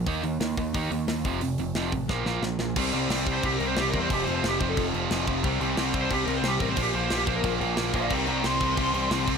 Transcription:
<<
  \new Staff \with { instrumentName = "Lead electric guitar" } { \time 4/4 \key f \major \tempo 4 = 180 r1 | r1 | r4 \tuplet 3/2 { r4 c''8 g'8 bes'8 c''8 g'8 bes'8 c''8 } | \tuplet 3/2 { g'8 c''8 c''8 g'8 c''8 a'8 } r2 |
r4 \tuplet 3/2 { r4 c''8 g'8 bes'8 c''8 g'8 bes'8 c''8 } | \tuplet 3/2 { g'8 c''8 c''8 g'8 c''8 bes'8 } r4. <d'' f''>8 | <bes' g''>8 <g'' bes''>8 c'''2. | }
  \new Staff \with { instrumentName = "Distorted electric guitar" } { \clef bass \time 4/4 \key f \major r1 | r1 | r1 | r1 |
r1 | r1 | <c e g c' e'>1 | }
  \new Staff \with { instrumentName = "Distorted electric guitar" } { \clef bass \time 4/4 \key f \major <ees bes ees'>8 <ees bes>8 <ees bes>8 <ees bes>8 <ees bes ees'>8 <ees bes>8 <ees bes>8 <f, c f>8 | <f, c>8 <f, c>8 <f, c f>8 <f, c>8 <bes, f bes>8 <bes, f bes>8 <bes, f>8 <bes, f>8 | <c g c'>8 <c g c'>8 <c g c'>8 <c g c'>8 <c g c'>8 <c g c'>8 <c g c'>8 <c g c'>8 | <f, c f>8 <f, c f>8 <f, c f>8 <f, c f>8 <f, c f>8 <f, c f>8 <f, c f>8 <f, c f>8 |
<c g c'>8 <c g c'>8 <c g c'>8 <c g c'>8 <c g c'>8 <c g c'>8 <c g c'>8 <c g c'>8 | <bes, f bes>8 <bes, f bes>8 <bes, f bes>8 <bes, f bes>8 <bes, f bes>8 <bes, f bes>8 <bes, f bes>8 <bes, f bes>8 | <c g c'>8 <c g c'>8 <c g c'>8 <c g c'>8 <c g c'>8 <c g c'>8 <c g c'>8 <c g c'>8 | }
  \new Staff \with { instrumentName = "Overdriven electric guitar" } { \clef bass \time 4/4 \key f \major <ees bes ees'>8 <ees bes>8 <ees bes>8 <ees bes>8 <ees bes ees'>8 <ees bes>8 <ees bes>8 <f, c f>8 | <f, c>8 <f, c>8 <f, c f>8 <f, c>8 <bes, f bes>8 <bes, f bes>8 <bes, f>8 <bes, f>8 | <c g c'>8 <c g c'>8 <c g c'>8 <c g c'>8 <c g c'>8 <c g c'>8 <c g c'>8 <c g c'>8 | <f, c f>8 <f, c f>8 <f, c f>8 <f, c f>8 <f, c f>8 <f, c f>8 <f, c f>8 <f, c f>8 |
<c g c'>8 <c g c'>8 <c g c'>8 <c g c'>8 <c g c'>8 <c g c'>8 <c g c'>8 <c g c'>8 | <bes, f bes>8 <bes, f bes>8 <bes, f bes>8 <bes, f bes>8 <bes, f bes>8 <bes, f bes>8 <bes, f bes>8 <bes, f bes>8 | <c g c'>8 <c g c'>8 <c g c'>8 <c g c'>8 <c g c'>8 <c g c'>8 <c g c'>8 <c g c'>8 | }
  \new Staff \with { instrumentName = "Picked electric bass" } { \clef bass \time 4/4 \key f \major ees,8 ees,8 ees,8 ees,8 ees,8 ees,8 ees,8 f,,8 | f,,8 f,,8 f,,8 a,,8 bes,,8 bes,,8 bes,,8 bes,,8 | c,8 c,8 c,4 c,8 c,8 c,8 e,8 | f,,8 f,,8 f,,8 f,,8 f,,8 f,,8 f,,8 f,,8 |
c,8 c,8 c,4 c,8 c,8 c,8 a,,8 | bes,,8 bes,,8 bes,,8 bes,,8 bes,,8 bes,,8 bes,,8 bes,,8 | c,8 c,8 c,4 c,8 c,8 c,8 c,8 | }
  \new DrumStaff \with { instrumentName = "Drums" } \drummode { \time 4/4 <hho bd>8 hho8 <hho sn>8 <hho bd>8 <hho bd>8 hho8 <hho sn>8 <hho bd>8 | hho8 hho8 <hho sn>8 <hho bd>8 <bd sn>8 sn8 sn8 sn8 | <cymc bd>8 cymc8 <cymc sn>8 <cymc bd>8 <cymc bd>8 cymc8 <cymc sn>8 <cymc bd>8 | <cymc bd>8 cymc8 <cymc sn>8 <cymc bd>8 <cymc bd>8 cymc8 <cymc sn>8 <cymc bd>8 |
<cymc bd>8 cymc8 <cymc sn>8 <cymc bd>8 <cymc bd>8 cymc8 <cymc sn>8 <cymc bd>8 | <cymc bd>8 cymc8 <cymc sn>8 <cymc bd>8 <cymc bd>8 cymc8 <cymc sn>8 <cymc bd>8 | <cymc bd>8 cymc8 <cymc sn>8 <cymc bd>8 <cymc bd>8 cymc8 <cymc sn>8 <cymc bd>8 | }
>>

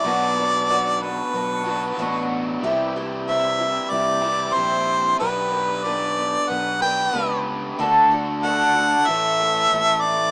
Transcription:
<<
  \new Staff \with { instrumentName = "Harmonica" } { \time 4/4 \key g \lydian \tempo 4 = 93 d''4. b'2 r8 | r4 e''4 d''4 c''4 | b'4 d''4 fis''8 g''4 r8 | r4 fis''4 e''4. d''8 | }
  \new Staff \with { instrumentName = "Twelve-string acoustic guitar" } { \time 4/4 \key g \lydian <b, fis b d' fis'>8 <b d' fis'>8 <b, fis b d' fis'>8 <b d' fis'>8 <fis b d' fis'>8 <b d' fis'>8 <b, fis b d' fis'>4 | <c e g e' g'>8 <g e' g'>8 <c e g e' g'>8 <g e' g'>8 <e g e' g'>8 <g e' g'>8 <c e g e' g'>4 | <b d' g' b'>8 <d' g' b'>8 <b d' g' b'>8 <d' g' b'>8 <b d' g' b'>8 <d' g' b'>8 <b d' g' b'>4 | <d d' fis' a'>8 <d' fis' a'>8 <d d' fis' a'>8 <d' fis' a'>8 <e a cis' a'>8 <a cis' a'>8 <a, e a a'>4 | }
  \new Staff \with { instrumentName = "Overdriven electric guitar" } { \time 4/4 \key g \lydian <b, fis b d' fis'>2~ <b, fis b d' fis'>8 <b, fis b d' fis'>8 <b, fis b d' fis'>4 | <c e g e' g'>2~ <c e g e' g'>8 <c e g e' g'>8 <c e g e' g'>4 | <b d' g' b'>2~ <b d' g' b'>8 <b d' g' b'>8 <b d' g' b'>4 | <d d' fis' a'>2 <a, e a cis' a'>2 | }
  \new Staff \with { instrumentName = "Fingered electric bass" } { \clef bass \time 4/4 \key g \lydian b,,2 b,,4 a,,4 | c,2 c,4 bes,,4 | b,,2 b,,4 cis,4 | d,2 a,,4 a,,4 | }
>>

